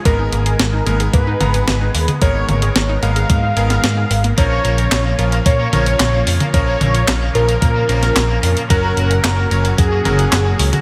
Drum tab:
HH |x-xxx-xxx-xxx-ox|x-xxx-xxx-xxx-ox|x-xxx-xxx-xxx-ox|x-xxx-xxx-xxx-ox|
CP |----------------|----------------|----x-------x---|----x-------x---|
SD |----o-------o---|----o------oo---|----o-------o---|----o------oo---|
T2 |----------o-o--o|--o-------------|----------o-o--o|--o-------------|
BD |o-------o-------|o-------o-------|o-------o-------|o-------o-------|

HH |x-xxx-xxx-xxx-ox|
CP |----x-------x---|
SD |----o-------o---|
T2 |----------o-o--o|
BD |o-------o-------|